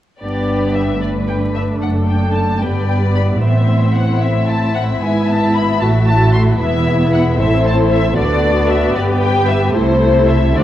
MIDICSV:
0, 0, Header, 1, 6, 480
1, 0, Start_track
1, 0, Key_signature, 1, "major"
1, 0, Tempo, 534283
1, 195, Time_signature, 6, 3, 24, 8
1, 3554, Tempo, 527704
1, 9629, End_track
2, 0, Start_track
2, 0, Title_t, "Violin section"
2, 0, Program_c, 0, 48
2, 186, Note_on_c, 0, 74, 49
2, 639, Note_off_c, 0, 74, 0
2, 667, Note_on_c, 0, 76, 47
2, 914, Note_off_c, 0, 76, 0
2, 914, Note_on_c, 0, 74, 45
2, 986, Note_off_c, 0, 74, 0
2, 1152, Note_on_c, 0, 79, 48
2, 1224, Note_off_c, 0, 79, 0
2, 1393, Note_on_c, 0, 76, 51
2, 1465, Note_off_c, 0, 76, 0
2, 1634, Note_on_c, 0, 78, 43
2, 1706, Note_off_c, 0, 78, 0
2, 1869, Note_on_c, 0, 79, 51
2, 2106, Note_off_c, 0, 79, 0
2, 2108, Note_on_c, 0, 81, 58
2, 2342, Note_on_c, 0, 79, 50
2, 2350, Note_off_c, 0, 81, 0
2, 2576, Note_off_c, 0, 79, 0
2, 2587, Note_on_c, 0, 79, 55
2, 2659, Note_off_c, 0, 79, 0
2, 2836, Note_on_c, 0, 83, 52
2, 2908, Note_off_c, 0, 83, 0
2, 3078, Note_on_c, 0, 76, 57
2, 3547, Note_off_c, 0, 76, 0
2, 3552, Note_on_c, 0, 78, 59
2, 3795, Note_off_c, 0, 78, 0
2, 3802, Note_on_c, 0, 76, 58
2, 4039, Note_off_c, 0, 76, 0
2, 4040, Note_on_c, 0, 81, 68
2, 4278, Note_off_c, 0, 81, 0
2, 4280, Note_on_c, 0, 78, 60
2, 4353, Note_off_c, 0, 78, 0
2, 4515, Note_on_c, 0, 80, 57
2, 4753, Note_off_c, 0, 80, 0
2, 4756, Note_on_c, 0, 81, 68
2, 4999, Note_off_c, 0, 81, 0
2, 5002, Note_on_c, 0, 83, 65
2, 5236, Note_on_c, 0, 81, 64
2, 5242, Note_off_c, 0, 83, 0
2, 5309, Note_off_c, 0, 81, 0
2, 5476, Note_on_c, 0, 81, 75
2, 5712, Note_off_c, 0, 81, 0
2, 5719, Note_on_c, 0, 84, 64
2, 5791, Note_off_c, 0, 84, 0
2, 5962, Note_on_c, 0, 76, 71
2, 6427, Note_off_c, 0, 76, 0
2, 6445, Note_on_c, 0, 78, 71
2, 6518, Note_off_c, 0, 78, 0
2, 6687, Note_on_c, 0, 76, 69
2, 6914, Note_off_c, 0, 76, 0
2, 6925, Note_on_c, 0, 81, 77
2, 6998, Note_off_c, 0, 81, 0
2, 7157, Note_on_c, 0, 76, 75
2, 7386, Note_off_c, 0, 76, 0
2, 7402, Note_on_c, 0, 74, 76
2, 7861, Note_off_c, 0, 74, 0
2, 7869, Note_on_c, 0, 76, 68
2, 8105, Note_off_c, 0, 76, 0
2, 8107, Note_on_c, 0, 74, 65
2, 8179, Note_off_c, 0, 74, 0
2, 8339, Note_on_c, 0, 79, 79
2, 8575, Note_off_c, 0, 79, 0
2, 8582, Note_on_c, 0, 76, 70
2, 8818, Note_on_c, 0, 72, 75
2, 8822, Note_off_c, 0, 76, 0
2, 9295, Note_off_c, 0, 72, 0
2, 9305, Note_on_c, 0, 76, 69
2, 9551, Note_off_c, 0, 76, 0
2, 9556, Note_on_c, 0, 74, 61
2, 9629, Note_off_c, 0, 74, 0
2, 9629, End_track
3, 0, Start_track
3, 0, Title_t, "Violin section"
3, 0, Program_c, 1, 48
3, 197, Note_on_c, 1, 67, 33
3, 198, Note_on_c, 1, 71, 36
3, 884, Note_off_c, 1, 67, 0
3, 905, Note_off_c, 1, 71, 0
3, 916, Note_on_c, 1, 71, 36
3, 1636, Note_off_c, 1, 71, 0
3, 1641, Note_on_c, 1, 69, 36
3, 2341, Note_off_c, 1, 69, 0
3, 2356, Note_on_c, 1, 74, 39
3, 2357, Note_on_c, 1, 71, 39
3, 3069, Note_on_c, 1, 72, 40
3, 3070, Note_on_c, 1, 64, 44
3, 3075, Note_off_c, 1, 71, 0
3, 3075, Note_off_c, 1, 74, 0
3, 3779, Note_off_c, 1, 72, 0
3, 3797, Note_on_c, 1, 76, 44
3, 5203, Note_off_c, 1, 64, 0
3, 5237, Note_on_c, 1, 64, 49
3, 5952, Note_off_c, 1, 76, 0
3, 5963, Note_on_c, 1, 76, 46
3, 6643, Note_off_c, 1, 64, 0
3, 6662, Note_off_c, 1, 76, 0
3, 6672, Note_on_c, 1, 72, 52
3, 6676, Note_on_c, 1, 69, 54
3, 7381, Note_off_c, 1, 69, 0
3, 7387, Note_off_c, 1, 72, 0
3, 7392, Note_on_c, 1, 69, 54
3, 7396, Note_on_c, 1, 74, 53
3, 8090, Note_off_c, 1, 69, 0
3, 8092, Note_off_c, 1, 74, 0
3, 8101, Note_on_c, 1, 71, 55
3, 8105, Note_on_c, 1, 67, 52
3, 8808, Note_off_c, 1, 67, 0
3, 8821, Note_off_c, 1, 71, 0
3, 8829, Note_on_c, 1, 72, 57
3, 8832, Note_on_c, 1, 69, 56
3, 9541, Note_off_c, 1, 72, 0
3, 9556, Note_on_c, 1, 72, 53
3, 9557, Note_off_c, 1, 69, 0
3, 9563, Note_on_c, 1, 66, 46
3, 9629, Note_off_c, 1, 66, 0
3, 9629, Note_off_c, 1, 72, 0
3, 9629, End_track
4, 0, Start_track
4, 0, Title_t, "Viola section"
4, 0, Program_c, 2, 48
4, 188, Note_on_c, 2, 59, 37
4, 189, Note_on_c, 2, 62, 34
4, 879, Note_off_c, 2, 59, 0
4, 880, Note_off_c, 2, 62, 0
4, 914, Note_on_c, 2, 57, 39
4, 915, Note_on_c, 2, 62, 38
4, 2322, Note_off_c, 2, 62, 0
4, 2350, Note_off_c, 2, 57, 0
4, 2350, Note_on_c, 2, 55, 37
4, 2353, Note_on_c, 2, 59, 37
4, 3071, Note_on_c, 2, 60, 37
4, 3072, Note_off_c, 2, 55, 0
4, 3780, Note_off_c, 2, 60, 0
4, 3794, Note_on_c, 2, 60, 38
4, 3796, Note_off_c, 2, 59, 0
4, 4502, Note_off_c, 2, 60, 0
4, 4517, Note_on_c, 2, 64, 46
4, 4520, Note_on_c, 2, 59, 45
4, 5227, Note_off_c, 2, 64, 0
4, 5242, Note_on_c, 2, 66, 44
4, 5243, Note_off_c, 2, 59, 0
4, 5243, Note_on_c, 2, 57, 50
4, 5958, Note_off_c, 2, 57, 0
4, 5958, Note_off_c, 2, 66, 0
4, 5958, Note_on_c, 2, 59, 50
4, 5958, Note_on_c, 2, 64, 53
4, 6660, Note_off_c, 2, 59, 0
4, 6660, Note_off_c, 2, 64, 0
4, 6672, Note_on_c, 2, 60, 52
4, 6675, Note_on_c, 2, 64, 50
4, 7374, Note_off_c, 2, 64, 0
4, 7383, Note_on_c, 2, 59, 63
4, 7383, Note_on_c, 2, 66, 56
4, 7387, Note_off_c, 2, 60, 0
4, 8085, Note_off_c, 2, 66, 0
4, 8099, Note_on_c, 2, 67, 54
4, 8790, Note_off_c, 2, 59, 0
4, 8820, Note_off_c, 2, 67, 0
4, 8824, Note_on_c, 2, 64, 58
4, 8825, Note_on_c, 2, 57, 60
4, 9539, Note_off_c, 2, 57, 0
4, 9553, Note_off_c, 2, 64, 0
4, 9556, Note_on_c, 2, 57, 44
4, 9557, Note_on_c, 2, 62, 47
4, 9629, Note_off_c, 2, 57, 0
4, 9629, Note_off_c, 2, 62, 0
4, 9629, End_track
5, 0, Start_track
5, 0, Title_t, "Cello section"
5, 0, Program_c, 3, 48
5, 196, Note_on_c, 3, 43, 42
5, 1601, Note_off_c, 3, 43, 0
5, 1633, Note_on_c, 3, 42, 40
5, 2336, Note_off_c, 3, 42, 0
5, 2354, Note_on_c, 3, 43, 39
5, 3074, Note_off_c, 3, 43, 0
5, 3078, Note_on_c, 3, 45, 44
5, 4491, Note_off_c, 3, 45, 0
5, 4518, Note_on_c, 3, 44, 46
5, 5227, Note_off_c, 3, 44, 0
5, 5240, Note_on_c, 3, 45, 42
5, 5954, Note_on_c, 3, 40, 56
5, 5957, Note_off_c, 3, 45, 0
5, 6657, Note_off_c, 3, 40, 0
5, 6669, Note_on_c, 3, 45, 53
5, 7385, Note_off_c, 3, 45, 0
5, 7390, Note_on_c, 3, 50, 52
5, 8103, Note_off_c, 3, 50, 0
5, 8104, Note_on_c, 3, 43, 54
5, 8808, Note_off_c, 3, 43, 0
5, 8824, Note_on_c, 3, 48, 54
5, 9538, Note_off_c, 3, 48, 0
5, 9549, Note_on_c, 3, 50, 46
5, 9629, Note_off_c, 3, 50, 0
5, 9629, End_track
6, 0, Start_track
6, 0, Title_t, "Double bass section"
6, 0, Program_c, 4, 48
6, 194, Note_on_c, 4, 31, 44
6, 1600, Note_off_c, 4, 31, 0
6, 1636, Note_on_c, 4, 30, 44
6, 2338, Note_off_c, 4, 30, 0
6, 2350, Note_on_c, 4, 31, 46
6, 3070, Note_on_c, 4, 33, 47
6, 3072, Note_off_c, 4, 31, 0
6, 4487, Note_off_c, 4, 33, 0
6, 4515, Note_on_c, 4, 32, 48
6, 5226, Note_off_c, 4, 32, 0
6, 5239, Note_on_c, 4, 33, 55
6, 5954, Note_on_c, 4, 28, 61
6, 5956, Note_off_c, 4, 33, 0
6, 6657, Note_off_c, 4, 28, 0
6, 6670, Note_on_c, 4, 33, 61
6, 7386, Note_off_c, 4, 33, 0
6, 7388, Note_on_c, 4, 38, 62
6, 8102, Note_off_c, 4, 38, 0
6, 8102, Note_on_c, 4, 31, 64
6, 8807, Note_off_c, 4, 31, 0
6, 8821, Note_on_c, 4, 36, 61
6, 9537, Note_off_c, 4, 36, 0
6, 9556, Note_on_c, 4, 38, 56
6, 9629, Note_off_c, 4, 38, 0
6, 9629, End_track
0, 0, End_of_file